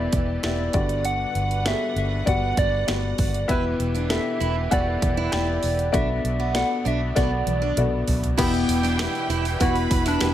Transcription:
Already playing: upright piano B2 B3 E4 G4 A4 E5, string section E3 E4 G4 B4, soft synth lead D5
0.12 fingered electric bass E1, kick, closed hi-hat
0.43 fingered electric bass E1, upright piano B3 E4 G4 E5, soft synth lead D5, snare, closed hi-hat
0.73 fingered electric bass G1, upright piano G2 D3 B3 F#4 G4 D5, string section G3 D4 B4 F#5, kick, closed hi-hat
0.89 closed hi-hat
1.05 soft synth lead F#5, closed hi-hat
1.35 fingered electric bass G1, closed hi-hat
1.51 closed hi-hat
1.65 upright piano B3 F#4 G4 G#4, soft synth lead E5, snare, closed hi-hat
1.72 upright piano A4
1.96 fingered electric bass G1, soft synth lead E5, closed hi-hat
2.26 fingered electric bass G1, upright piano B3 F#4 G4 D5, soft synth lead F#5, kick, closed hi-hat
2.57 fingered electric bass G1, soft synth lead D5, kick, closed hi-hat
2.87 fingered electric bass G1, upright piano B3 F#4 G4 D5, snare, closed hi-hat
3.18 fingered electric bass G1, kick, open hi-hat
3.34 closed hi-hat
3.48 fingered electric bass E1, upright piano B2 B3 E4 G4 E5, string section E3 E4 G4 B4, steel-string acoustic guitar E4, soft synth lead B4, kick, closed hi-hat
3.80 fingered electric bass E1, closed hi-hat
3.95 steel-string acoustic guitar D4, closed hi-hat
4.09 upright piano B3 E4 G4 A4, soft synth lead E5, snare, closed hi-hat
4.40 fingered electric bass E1, steel-string acoustic guitar E4, closed hi-hat
4.71 fingered electric bass E1, upright piano B3 E4 G4 F#5, steel-string acoustic guitar F#4, soft synth lead D5, kick, closed hi-hat
5.02 fingered electric bass E1, kick, closed hi-hat
5.17 steel-string acoustic guitar E4
5.32 fingered electric bass E1, upright piano B3 E4 G4 G5, soft synth lead D5, snare, closed hi-hat
5.63 fingered electric bass E1, open hi-hat
5.79 closed hi-hat
5.92 fingered electric bass B1, string section A3 B3 D4, upright piano B3 F#4 A4 D5, steel-string acoustic guitar D4, soft synth lead E5, kick, closed hi-hat
6.24 fingered electric bass B1, closed hi-hat
6.40 steel-string acoustic guitar B3
6.55 upright piano B3 F#4 A4 D5, soft synth lead F#5, snare, closed hi-hat
6.85 fingered electric bass B1, steel-string acoustic guitar D4, soft synth lead E5, closed hi-hat
7.15 fingered electric bass B1, upright piano B3 F#4 A4 D5, steel-string acoustic guitar B3, soft synth lead D5, kick, snare, closed hi-hat
7.46 fingered electric bass B1, closed hi-hat, high tom
7.62 steel-string acoustic guitar D4
7.77 fingered electric bass B1, upright piano B3 F#4 A4 D5, closed hi-hat, mid tom
8.07 fingered electric bass B1, floor tom, open hi-hat
8.23 closed hi-hat, floor tom
8.37 fingered electric bass E1, upright piano B2 B3 E4 G4, string section E3 G3 E4 B4, soft synth lead B3, steel-string acoustic guitar E4, violin section G4 G5, kick, open hi-hat, crash
8.54 open hi-hat
8.68 fingered electric bass E1, open hi-hat
8.83 steel-string acoustic guitar D4, open hi-hat
8.99 upright piano B3 E4 G4, snare, open hi-hat
9.15 open hi-hat
9.29 fingered electric bass E1, steel-string acoustic guitar E4, open hi-hat
9.45 open hi-hat
9.60 fingered electric bass E1, upright piano B3 E4 F#4, soft synth lead E4, steel-string acoustic guitar F#4, violin section B4 B5, kick, open hi-hat
9.76 open hi-hat
9.91 fingered electric bass E1, kick, open hi-hat
10.06 soft synth lead D4, steel-string acoustic guitar E4, snare, open hi-hat
10.21 fingered electric bass E1, upright piano B3 E4 G4, snare, open hi-hat

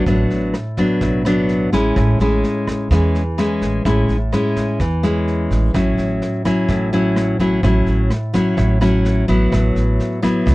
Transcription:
0.06 upright bass A1, nylon-string guitar A2 F#3 B3 D4, kick, snare
0.30 snare
0.54 cross-stick, snare
0.77 nylon-string guitar F#3 B3 D4, kick, snare
1.01 upright bass B1, nylon-string guitar A2, kick, snare
1.25 nylon-string guitar F#3 B3 D4, cross-stick, snare
1.49 snare
1.72 upright bass A1, nylon-string guitar G#3 C#4 E4, kick, snare
1.96 upright bass A1, nylon-string guitar A2, kick, cross-stick, snare
2.19 upright bass A1, nylon-string guitar G#3 C#4 E4, snare
2.44 snare
2.67 kick, cross-stick, snare
2.91 upright bass E2, nylon-string guitar E3 G#3 C#4 E4, kick, snare
3.15 snare
3.38 nylon-string guitar G#3 C#4 E4, cross-stick, snare
3.62 upright bass A1, kick, snare
3.85 upright bass A1, nylon-string guitar A2 G#3 C#4 E4, kick, snare
4.08 upright bass A1, snare
4.32 nylon-string guitar G#3 C#4 E4, cross-stick, snare
4.56 kick, snare
4.80 upright bass E2, nylon-string guitar E3, kick, snare
5.03 nylon-string guitar G#3 C#4 E4, cross-stick, snare
5.28 snare
5.51 upright bass A1, kick, snare
5.74 upright bass A1, nylon-string guitar A2 F#3 C#4 E4, kick, cross-stick, snare
5.97 upright bass A1, snare
6.22 snare
6.45 nylon-string guitar F#3 C#4 E4, kick, cross-stick, snare
6.68 upright bass A1, nylon-string guitar A2, kick, snare
6.92 nylon-string guitar F#3 C#4 E4, snare
7.16 cross-stick, snare
7.39 upright bass A1, nylon-string guitar F#3 C#4 E4, kick, snare
7.63 upright bass A1, nylon-string guitar A2 F#3 C#4 E4, kick, snare
7.86 upright bass A1, snare
8.10 cross-stick, snare
8.34 nylon-string guitar F#3 C#4 E4, kick, snare
8.57 upright bass A1, nylon-string guitar A2, kick, snare
8.81 nylon-string guitar F#3 C#4 E4, cross-stick, snare
9.05 snare
9.28 upright bass A1, nylon-string guitar F#3 B3 E4, kick, snare
9.52 upright bass A1, nylon-string guitar A2, kick, cross-stick, snare
9.75 upright bass A1, snare
10.00 snare
10.22 nylon-string guitar F#3 B3 E4, kick, cross-stick, snare
10.46 upright bass C#2, nylon-string guitar A2, kick, snare

